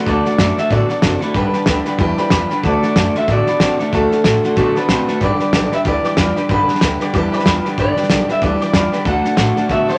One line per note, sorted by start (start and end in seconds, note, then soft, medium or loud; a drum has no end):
0.06 0.22 D2 medium
0.06 0.26 D3 medium
0.06 0.37 D3 medium
0.06 0.26 A3 medium
0.06 0.37 A3 medium
0.06 0.26 D4 medium
0.06 0.25 F#4 medium
0.06 0.24 A4 medium
0.06 0.18 D5 medium
0.06 0.38 D5 medium
0.06 0.18 F#5 medium
0.06 0.18 A5 loud
0.06 kick loud
0.06 snare soft
0.25 0.37 D4 soft
0.25 0.39 F#4 soft
0.25 0.38 A4 medium
0.25 0.34 D5 medium
0.25 0.34 F#5 medium
0.25 0.34 A5 medium
0.25 muted upright bass stroke medium
0.25 snare soft
0.38 0.54 F#2 loud
0.38 0.56 D3 medium
0.38 0.57 A3 medium
0.38 0.56 A3 medium
0.38 0.58 D4 medium
0.38 0.58 F#4 medium
0.38 0.56 A4 medium
0.38 0.50 D5 medium
0.38 0.58 D5 medium
0.38 0.50 F#5 medium
0.38 0.51 A5 medium
0.38 kick medium
0.38 snare loud
0.38 hi-hat pedal medium
0.57 0.70 D3 medium
0.57 0.70 A3 medium
0.57 0.70 D4 soft
0.57 0.71 F#4 medium
0.57 0.71 A4 medium
0.57 0.66 D5 medium
0.57 0.71 E5 medium
0.57 0.66 F#5 medium
0.57 0.67 A5 medium
0.57 snare soft
0.70 0.86 A2 medium
0.70 0.89 D3 medium
0.70 1.01 D3 medium
0.70 0.90 A3 medium
0.70 1.01 B3 medium
0.70 0.90 D4 medium
0.70 0.89 F#4 medium
0.70 0.88 A4 loud
0.70 0.82 D5 medium
0.70 1.38 D5 medium
0.70 0.83 F#5 medium
0.70 0.83 A5 medium
0.70 kick loud
0.70 snare soft
0.89 1.03 D4 soft
0.89 1.03 F#4 soft
0.89 1.02 A4 medium
0.89 0.97 D5 medium
0.89 0.98 F#5 medium
0.89 0.98 A5 loud
0.89 snare soft
1.02 1.18 F#1 medium
1.02 1.20 D3 medium
1.02 1.22 A3 medium
1.02 1.21 C4 loud
1.02 1.23 D4 medium
1.02 1.21 F#4 medium
1.02 1.19 A4 medium
1.02 1.14 D5 loud
1.02 1.14 F#5 medium
1.02 1.15 A5 loud
1.02 kick medium
1.02 snare loud
1.02 hi-hat pedal medium
1.20 1.34 D3 medium
1.20 1.34 A3 medium
1.20 1.34 D4 soft
1.20 1.35 F#4 medium
1.20 1.34 A4 medium
1.20 1.30 D5 medium
1.20 1.30 F#5 medium
1.20 1.30 B5 loud
1.20 snare soft
1.34 1.50 G1 medium
1.34 1.65 G2 medium
1.34 1.65 D3 loud
1.34 1.54 G3 medium
1.34 1.54 D4 medium
1.34 1.54 G4 medium
1.34 1.52 B4 medium
1.34 2.18 B4 medium
1.34 1.46 D5 medium
1.34 1.46 G5 medium
1.34 1.47 B5 loud
1.34 kick loud
1.34 snare soft
1.53 1.65 D4 soft
1.53 1.67 G4 soft
1.53 1.67 B4 medium
1.53 1.62 D5 medium
1.53 1.62 G5 medium
1.53 1.63 A5 medium
1.53 muted upright bass stroke medium
1.53 snare soft
1.66 1.82 D2 loud
1.66 1.84 G2 medium
1.66 1.85 D3 medium
1.66 1.86 G3 medium
1.66 1.86 D4 medium
1.66 1.86 G4 medium
1.66 1.84 B4 medium
1.66 1.78 D5 medium
1.66 1.79 G5 medium
1.66 1.79 B5 medium
1.66 kick medium
1.66 snare loud
1.66 hi-hat pedal medium
1.85 1.98 G2 medium
1.85 1.98 D3 medium
1.85 1.99 D4 medium
1.85 1.99 G4 medium
1.85 1.99 B4 medium
1.85 1.94 D5 medium
1.85 1.94 G5 medium
1.85 1.94 B5 medium
1.85 snare soft
1.98 2.14 E2 loud
1.98 2.29 G2 medium
1.98 2.30 E3 medium
1.98 2.18 G3 medium
1.98 2.19 D4 medium
1.98 2.18 G4 loud
1.98 2.16 B4 loud
1.98 2.10 D5 medium
1.98 2.11 G5 medium
1.98 2.11 B5 loud
1.98 kick loud
1.98 snare soft
2.17 2.30 D4 soft
2.17 2.31 G4 medium
2.17 2.31 B4 medium
2.17 2.66 B4 medium
2.17 2.26 D5 medium
2.17 2.26 G5 medium
2.17 2.26 B5 loud
2.17 snare soft
2.30 2.47 E2 medium
2.30 2.49 G2 loud
2.30 2.50 F3 medium
2.30 2.50 G3 medium
2.30 2.51 D4 medium
2.30 2.50 G4 medium
2.30 2.48 B4 medium
2.30 2.42 D5 loud
2.30 2.43 G5 medium
2.30 2.43 D6 loud
2.30 kick medium
2.30 snare loud
2.30 hi-hat pedal medium
2.49 2.63 G2 medium
2.49 2.63 D3 medium
2.49 2.63 D4 soft
2.49 2.64 G4 medium
2.49 2.63 B4 medium
2.49 2.58 D5 medium
2.49 2.58 G5 medium
2.49 2.59 B5 medium
2.49 snare soft
2.63 2.79 D2 loud
2.63 2.83 D3 medium
2.63 2.93 D3 medium
2.63 2.94 A3 loud
2.63 2.83 A3 medium
2.63 2.83 D4 medium
2.63 2.83 F#4 medium
2.63 2.81 A4 medium
2.63 2.75 D5 medium
2.63 3.17 D5 loud
2.63 2.75 F#5 medium
2.63 2.76 A5 loud
2.63 kick loud
2.63 snare soft
2.83 2.96 D4 soft
2.83 2.97 F#4 medium
2.83 2.96 A4 medium
2.83 2.91 D5 medium
2.83 2.91 F#5 medium
2.83 2.91 A5 medium
2.83 snare soft
2.95 3.11 F#2 loud
2.95 3.13 D3 medium
2.95 3.15 A3 medium
2.95 3.13 A3 loud
2.95 3.15 D4 medium
2.95 3.16 F#4 medium
2.95 3.15 A4 medium
2.95 3.08 D5 medium
2.95 3.08 F#5 medium
2.95 3.08 A5 medium
2.95 kick medium
2.95 snare loud
2.95 hi-hat pedal medium
3.14 3.27 D3 medium
3.14 3.27 A3 medium
3.14 3.29 F#4 medium
3.14 3.29 A4 medium
3.14 3.23 D5 medium
3.14 3.30 E5 loud
3.14 3.23 F#5 medium
3.14 3.24 C6 medium
3.14 muted upright bass stroke medium
3.14 snare soft
3.19 3.28 D4 soft
3.28 3.43 A2 medium
3.28 3.47 D3 medium
3.28 3.58 D3 medium
3.28 3.48 A3 medium
3.28 3.58 B3 loud
3.28 3.48 D4 medium
3.28 3.48 F#4 medium
3.28 3.47 A4 medium
3.28 3.40 D5 medium
3.28 3.40 F#5 medium
3.28 3.40 A5 medium
3.28 kick loud
3.28 snare soft
3.32 3.90 D5 medium
3.47 3.62 F#4 medium
3.47 3.61 A4 medium
3.47 3.55 D5 loud
3.47 3.55 F#5 medium
3.47 3.56 B5 loud
3.47 snare soft
3.51 3.61 D4 soft
3.60 3.76 C3 medium
3.60 3.78 D3 medium
3.60 3.80 A3 medium
3.60 3.78 C4 loud
3.60 3.80 D4 medium
3.60 3.80 F#4 medium
3.60 3.78 A4 medium
3.60 3.72 F#5 medium
3.60 3.72 A5 loud
3.60 kick medium
3.60 snare loud
3.60 hi-hat pedal medium
3.79 3.91 D3 medium
3.79 3.92 A3 medium
3.79 3.92 D4 medium
3.79 3.93 F#4 medium
3.79 3.92 A4 medium
3.79 3.88 D5 medium
3.79 3.88 F#5 medium
3.79 3.88 A5 loud
3.79 muted upright bass stroke medium
3.79 snare soft
3.92 4.08 D2 medium
3.92 4.11 D3 medium
3.92 4.22 D3 medium
3.92 4.12 A3 medium
3.92 4.23 A3 loud
3.92 4.12 D4 medium
3.92 4.12 F#4 medium
3.92 4.10 A4 medium
3.92 4.77 A4 medium
3.92 4.04 D5 medium
3.92 4.04 F#5 medium
3.92 4.05 A5 loud
3.92 kick loud
3.92 snare soft
4.11 4.24 D4 soft
4.11 4.25 F#4 medium
4.11 4.24 A4 medium
4.11 4.20 D5 medium
4.11 4.20 F#5 medium
4.11 4.20 A5 medium
4.11 snare soft
4.24 4.40 A2 loud
4.24 4.42 D3 medium
4.24 4.43 A3 medium
4.24 4.42 A3 loud
4.24 4.44 D4 medium
4.24 4.44 F#4 medium
4.24 4.42 A4 medium
4.24 4.37 D5 medium
4.24 4.37 F#5 medium
4.24 4.37 C6 medium
4.24 kick medium
4.24 snare loud
4.24 hi-hat pedal medium
4.43 4.56 D3 medium
4.43 4.56 A3 medium
4.43 4.56 D4 medium
4.43 4.56 F#4 medium
4.43 4.56 A4 medium
4.43 4.52 D5 medium
4.43 4.52 F#5 medium
4.43 4.53 C6 medium
4.43 snare soft
4.56 4.72 B2 loud
4.56 4.75 D3 medium
4.56 4.86 D3 medium
4.56 4.76 A3 loud
4.56 4.87 B3 loud
4.56 4.76 D4 medium
4.56 4.76 F#4 medium
4.56 4.74 A4 medium
4.56 4.68 D5 medium
4.56 4.68 F#5 medium
4.56 4.68 C6 medium
4.56 kick loud
4.56 snare soft
4.75 4.88 D4 soft
4.75 4.89 F#4 medium
4.75 4.89 A4 medium
4.75 5.19 B4 medium
4.75 4.84 D5 medium
4.75 4.84 F#5 medium
4.75 4.84 A5 loud
4.75 muted upright bass stroke medium
4.75 snare soft
4.88 5.04 C3 medium
4.88 5.06 D3 medium
4.88 5.08 A3 medium
4.88 5.06 C4 loud
4.88 5.08 D4 medium
4.88 5.08 F#4 medium
4.88 5.06 A4 medium
4.88 5.00 D5 medium
4.88 5.01 F#5 medium
4.88 5.01 C6 loud
4.88 kick medium
4.88 snare loud
4.88 hi-hat pedal medium
5.07 5.20 D3 medium
5.07 5.20 A3 medium
5.07 5.20 D4 soft
5.07 5.21 F#4 medium
5.07 5.21 A4 medium
5.07 5.16 D5 medium
5.07 5.16 F#5 medium
5.07 5.16 A5 medium
5.07 muted upright bass stroke medium
5.07 snare soft
5.20 5.36 G1 medium
5.20 5.51 G2 medium
5.20 5.51 D3 loud
5.20 5.40 G3 medium
5.20 5.40 D4 medium
5.20 5.40 G4 medium
5.20 5.39 B4 medium
5.20 5.33 D5 medium
5.20 5.33 G5 medium
5.20 5.34 B5 loud
5.20 kick loud
5.20 snare soft
5.24 5.74 D5 medium
5.39 5.52 D4 soft
5.39 5.53 G4 soft
5.39 5.53 B4 medium
5.39 5.48 D5 medium
5.39 5.48 G5 medium
5.39 5.48 B5 medium
5.39 muted upright bass stroke medium
5.39 snare soft
5.52 5.68 B1 loud
5.52 5.71 G2 medium
5.52 5.71 D3 medium
5.52 5.72 G3 medium
5.52 5.72 D4 medium
5.52 5.72 G4 medium
5.52 5.71 B4 medium
5.52 5.64 D5 medium
5.52 5.65 G5 medium
5.52 5.65 A5 medium
5.52 kick medium
5.52 snare loud
5.52 hi-hat pedal medium
5.71 5.84 G2 medium
5.71 5.84 D3 medium
5.71 5.85 D4 soft
5.71 5.85 G4 medium
5.71 5.85 B4 medium
5.71 5.80 D5 medium
5.71 5.79 E5 loud
5.71 5.80 G5 medium
5.71 5.80 B5 medium
5.71 muted upright bass stroke medium
5.71 snare soft
5.85 6.00 D2 loud
5.85 6.15 G2 medium
5.85 6.15 E3 medium
5.85 6.04 G3 medium
5.85 6.05 D4 medium
5.85 6.04 G4 medium
5.85 6.03 B4 medium
5.85 5.96 D5 medium
5.85 6.53 D5 medium
5.85 5.97 G5 medium
5.85 5.97 B5 medium
5.85 kick loud
5.85 snare soft
6.04 6.18 D4 soft
6.04 6.18 G4 medium
6.04 6.17 B4 medium
6.04 6.12 D5 medium
6.04 6.13 G5 medium
6.04 6.13 D6 loud
6.04 snare soft
6.17 6.33 E2 medium
6.17 6.35 G2 loud
6.17 6.35 F3 loud
6.17 6.36 G3 medium
6.17 6.37 D4 medium
6.17 6.37 G4 medium
6.17 6.35 B4 medium
6.17 6.29 D5 loud
6.17 6.29 G5 medium
6.17 6.30 B5 loud
6.17 kick medium
6.17 snare loud
6.17 hi-hat pedal medium
6.36 6.48 G2 medium
6.36 6.49 D3 medium
6.36 6.49 D4 soft
6.36 6.50 G4 medium
6.36 6.49 B4 medium
6.36 6.44 D5 medium
6.36 6.44 G5 medium
6.36 6.45 B5 loud
6.36 snare soft
6.49 6.65 G1 medium
6.49 6.79 G2 medium
6.49 6.79 D3 loud
6.49 6.68 G3 medium
6.49 6.69 D4 medium
6.49 6.69 G4 medium
6.49 7.34 B4 loud
6.49 6.67 B4 medium
6.49 6.61 D5 loud
6.49 6.61 G5 medium
6.49 6.61 B5 loud
6.49 kick loud
6.49 snare soft
6.68 6.81 D4 soft
6.68 6.82 G4 soft
6.68 6.82 B4 medium
6.68 6.76 D5 medium
6.68 6.77 G5 medium
6.68 6.77 A5 medium
6.68 muted upright bass stroke medium
6.68 snare soft
6.75 snare soft
6.81 6.97 D2 loud
6.81 6.99 G2 medium
6.81 6.99 D3 medium
6.81 7.00 G3 medium
6.81 7.01 D4 medium
6.81 7.01 G4 medium
6.81 6.99 B4 medium
6.81 6.93 D5 medium
6.81 6.93 G5 medium
6.81 6.93 A5 medium
6.81 kick medium
6.81 snare loud
6.81 hi-hat pedal medium
7.00 7.12 G2 medium
7.00 7.13 D3 medium
7.00 7.13 D4 medium
7.00 7.14 G4 medium
7.00 7.13 B4 medium
7.00 7.08 D5 medium
7.00 7.09 G5 medium
7.00 7.09 D6 medium
7.00 muted upright bass stroke medium
7.00 snare soft
7.13 7.29 E2 loud
7.13 7.44 G2 medium
7.13 7.44 E3 loud
7.13 7.32 G3 medium
7.13 7.33 D4 medium
7.13 7.33 G4 loud
7.13 7.31 B4 loud
7.13 7.25 D5 medium
7.13 7.25 G5 medium
7.13 7.25 D6 loud
7.13 kick loud
7.13 snare soft
7.32 7.45 D4 soft
7.32 7.46 G4 medium
7.32 7.45 B4 medium
7.32 7.80 B4 loud
7.32 7.40 D5 loud
7.32 7.41 G5 medium
7.32 7.41 D6 loud
7.32 snare soft
7.39 snare soft
7.46 7.61 E2 medium
7.46 7.63 G2 medium
7.46 7.64 F3 loud
7.46 7.65 G3 medium
7.46 7.65 D4 medium
7.46 7.65 G4 medium
7.46 7.64 B4 medium
7.46 7.57 D5 loud
7.46 7.57 G5 medium
7.46 7.58 B5 loud
7.46 kick medium
7.46 snare loud
7.46 hi-hat pedal medium
7.64 7.77 G2 medium
7.64 7.77 D3 medium
7.64 7.77 D4 soft
7.64 7.78 G4 medium
7.64 7.78 B4 medium
7.64 7.72 D5 medium
7.64 7.73 G5 medium
7.64 7.73 B5 medium
7.64 snare soft
7.77 7.93 G1 loud
7.77 8.08 G2 medium
7.77 8.08 D3 loud
7.77 7.97 G3 medium
7.77 7.97 D4 medium
7.77 7.97 G4 medium
7.77 7.96 B4 medium
7.77 7.89 D5 medium
7.77 8.26 D5 loud
7.77 7.89 G5 medium
7.77 7.90 B5 loud
7.77 kick loud
7.77 snare soft
7.95 8.11 G4 medium
7.95 8.10 B4 medium
7.95 8.04 D5 medium
7.95 8.04 G5 medium
7.95 8.04 B5 medium
7.95 muted upright bass stroke medium
7.95 snare soft
8.00 8.10 D4 soft
8.00 snare soft
8.09 8.25 B1 medium
8.09 8.27 G2 medium
8.09 8.27 D3 medium
8.09 8.29 G3 medium
8.09 8.29 D4 medium
8.09 8.29 G4 medium
8.09 8.21 D5 medium
8.09 8.21 G5 medium
8.09 8.21 A5 medium
8.09 kick medium
8.09 snare loud
8.09 hi-hat pedal medium
8.13 8.28 B4 medium
8.28 8.41 G2 medium
8.28 8.41 D3 medium
8.28 8.42 G4 medium
8.28 8.42 B4 medium
8.28 8.36 D5 medium
8.28 8.36 G5 medium
8.28 8.37 B5 medium
8.28 muted upright bass stroke medium
8.28 snare soft
8.32 8.42 D4 soft
8.32 8.44 E5 loud
8.41 8.57 D2 loud
8.41 8.71 G2 medium
8.41 8.71 E3 loud
8.41 8.61 G3 medium
8.41 8.61 D4 medium
8.41 8.62 G4 medium
8.41 8.60 B4 loud
8.41 8.53 D5 medium
8.41 9.08 D5 loud
8.41 8.53 G5 medium
8.41 8.54 D6 medium
8.41 kick loud
8.41 snare soft
8.60 8.75 G4 soft
8.60 8.74 B4 medium
8.60 8.68 D5 medium
8.60 8.69 G5 medium
8.60 8.69 D6 loud
8.60 snare soft
8.64 8.74 D4 soft
8.73 8.89 E2 medium
8.73 8.91 G2 medium
8.73 8.91 F3 loud
8.73 8.93 G3 medium
8.73 8.94 D4 medium
8.73 8.94 G4 medium
8.73 8.92 B4 medium
8.73 8.85 D5 medium
8.73 8.85 G5 medium
8.73 8.86 B5 loud
8.73 kick medium
8.73 snare loud
8.73 hi-hat pedal medium
8.92 9.05 G2 medium
8.92 9.04 D3 medium
8.92 9.06 D4 medium
8.92 9.07 G4 medium
8.92 9.06 B4 medium
8.92 9.00 D5 medium
8.92 9.01 G5 medium
8.92 9.01 B5 loud
8.92 snare soft
9.05 9.21 D2 medium
9.05 9.35 D3 medium
9.05 9.25 D3 medium
9.05 9.35 A3 medium
9.05 9.25 A3 medium
9.05 9.25 D4 medium
9.05 9.25 F#4 medium
9.05 9.23 A4 medium
9.05 9.17 D5 medium
9.05 9.17 F#5 medium
9.05 9.71 F#5 loud
9.05 9.17 A5 loud
9.05 kick loud
9.05 snare soft
9.23 9.38 F#4 medium
9.23 9.38 A4 medium
9.23 9.32 D5 medium
9.23 9.32 F#5 medium
9.23 9.32 A5 medium
9.23 snare soft
9.28 9.38 D4 soft
9.35 9.53 A2 loud
9.35 9.54 D3 medium
9.35 9.54 A3 loud
9.35 9.57 A3 medium
9.35 9.57 D4 medium
9.35 9.48 D5 medium
9.35 9.49 F#5 medium
9.35 9.49 C6 medium
9.35 kick medium
9.35 snare loud
9.35 hi-hat pedal medium
9.39 9.57 F#4 medium
9.39 9.55 A4 medium
9.55 9.68 D3 medium
9.55 9.68 A3 medium
9.55 9.69 F#4 medium
9.55 9.69 A4 medium
9.55 9.64 D5 medium
9.55 9.64 F#5 medium
9.55 9.64 A5 medium
9.55 snare soft
9.59 9.69 D4 medium
9.67 9.85 B2 loud
9.67 9.88 D3 medium
9.67 9.98 D3 medium
9.67 9.89 A3 medium
9.67 9.98 B3 medium
9.67 9.89 D4 medium
9.67 9.89 F#4 medium
9.67 9.87 A4 medium
9.67 9.80 D5 medium
9.67 9.80 F#5 medium
9.67 9.81 A5 medium
9.67 kick loud
9.67 snare soft
9.72 9.89 E5 loud
9.86 9.98 A4 medium
9.86 9.95 D5 medium
9.86 9.98 D5 medium
9.86 9.96 F#5 medium
9.86 9.96 A5 loud
9.86 muted upright bass stroke medium
9.86 snare soft
9.90 9.98 D4 soft
9.90 9.98 F#4 soft